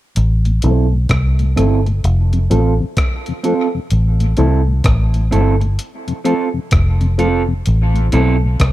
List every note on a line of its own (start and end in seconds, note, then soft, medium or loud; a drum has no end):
0.16 0.61 A1 loud
0.16 closed hi-hat medium
0.45 0.51 A2 medium
0.45 closed hi-hat soft
0.62 1.07 B1 medium
0.62 0.72 E3 medium
0.62 0.72 A3 medium
0.62 0.85 C4 medium
0.62 0.73 C4 medium
0.62 0.86 E4 medium
0.62 0.86 A4 medium
0.62 closed hi-hat medium
0.92 0.98 A2 medium
1.09 1.54 C2 medium
1.09 kick loud
1.09 cross-stick loud
1.09 closed hi-hat medium
1.39 1.45 A2 medium
1.39 closed hi-hat soft
1.56 2.01 G1 medium
1.56 1.66 E3 medium
1.56 1.66 A3 medium
1.56 1.79 C4 medium
1.56 1.66 C4 medium
1.56 1.79 E4 medium
1.56 1.79 A4 medium
1.56 cross-stick medium
1.56 closed hi-hat medium
1.86 1.92 A2 medium
1.86 muted clean electric guitar stroke soft
1.86 closed hi-hat soft
2.04 2.48 F1 loud
2.04 closed hi-hat medium
2.33 2.39 F2 medium
2.33 2.39 C3 medium
2.33 closed hi-hat medium
2.50 2.78 A1 medium
2.50 2.60 F3 medium
2.50 2.60 A3 medium
2.50 2.73 C4 medium
2.50 2.60 C4 medium
2.50 2.73 F4 medium
2.50 2.73 A4 loud
2.50 closed hi-hat medium
2.80 2.86 F2 medium
2.80 2.86 C3 medium
2.97 kick loud
2.97 cross-stick medium
2.97 closed hi-hat medium
3.26 3.33 F2 medium
3.26 3.33 C3 medium
3.26 closed hi-hat medium
3.43 3.54 F3 medium
3.43 3.54 A3 medium
3.43 3.66 C4 medium
3.43 3.55 C4 medium
3.43 3.67 F4 medium
3.43 3.67 A4 loud
3.43 closed hi-hat medium
3.74 3.79 F2 medium
3.74 3.80 C3 medium
3.90 4.36 A1 loud
3.90 closed hi-hat medium
4.20 4.26 A2 medium
4.20 closed hi-hat soft
4.37 4.83 C2 medium
4.37 4.47 E3 medium
4.37 4.47 A3 medium
4.37 4.60 C4 medium
4.37 4.48 C4 medium
4.37 4.60 E4 medium
4.37 4.61 A4 medium
4.37 closed hi-hat medium
4.68 4.73 A2 medium
4.84 5.29 A1 loud
4.84 kick loud
4.84 cross-stick loud
4.84 closed hi-hat medium
5.14 5.21 A2 medium
5.14 closed hi-hat soft
5.31 5.77 G1 medium
5.31 5.41 E3 medium
5.31 5.42 A3 medium
5.31 5.54 C4 medium
5.31 5.42 C4 medium
5.31 5.54 E4 medium
5.31 5.55 A4 loud
5.31 closed hi-hat medium
5.61 5.67 A2 medium
5.61 muted clean electric guitar stroke soft
5.61 closed hi-hat soft
5.79 closed hi-hat medium
6.07 6.13 F2 medium
6.07 6.13 C3 medium
6.07 closed hi-hat medium
6.24 6.34 F3 medium
6.24 6.35 A3 medium
6.24 6.47 C4 medium
6.24 6.35 C4 medium
6.24 6.48 F4 medium
6.24 6.48 A4 medium
6.24 closed hi-hat medium
6.53 6.60 F2 medium
6.53 6.60 C3 medium
6.71 7.62 F1 medium
6.71 kick medium
6.71 cross-stick loud
6.71 closed hi-hat loud
7.01 7.07 F2 medium
7.01 7.07 C3 medium
7.01 closed hi-hat soft
7.18 7.28 F3 medium
7.18 7.28 A3 medium
7.18 7.28 C4 medium
7.18 7.42 C4 medium
7.18 7.42 F4 medium
7.18 7.42 A4 medium
7.18 closed hi-hat medium
7.48 7.54 F2 medium
7.48 7.54 C3 medium
7.66 8.11 A1 loud
7.66 closed hi-hat medium
7.94 8.00 A2 medium
7.94 closed hi-hat soft
8.12 8.58 B1 loud
8.12 8.22 E3 medium
8.12 8.22 A3 medium
8.12 8.35 C4 medium
8.12 8.22 C4 medium
8.12 8.36 E4 medium
8.12 8.36 A4 medium
8.12 closed hi-hat medium
8.42 8.48 A2 medium
8.60 8.72 C2 medium
8.60 kick loud
8.60 cross-stick loud
8.60 closed hi-hat medium